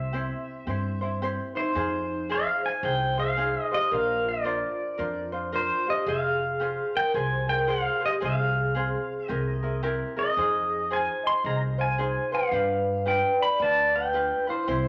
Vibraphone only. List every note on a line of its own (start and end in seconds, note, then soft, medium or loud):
1.55 2.25 D#4 medium
2.29 2.61 G#4 medium
2.63 2.82 C5 medium
2.84 3.15 C5 medium
3.18 3.68 G#4 medium
3.72 3.90 G4 medium
3.91 4.23 A#4 medium
4.25 5.29 F4 medium
5.53 5.85 F4 medium
5.87 6.06 G4 medium
6.07 6.91 G#4 medium
6.95 7.13 A#4 medium
7.15 7.47 C5 medium
7.49 7.67 A#4 medium
7.69 8.00 G#4 medium
8.03 8.12 G4 medium
10.17 10.87 G#4 medium
10.91 11.23 C5 medium
11.23 11.43 D#5 medium
11.44 11.60 D#5 medium
11.78 12.28 C5 medium
12.32 13.02 B4 medium
13.06 13.38 B4 medium
13.40 13.58 D5 medium
13.60 13.91 D5 medium
13.94 14.44 B4 medium
14.48 14.88 E4 medium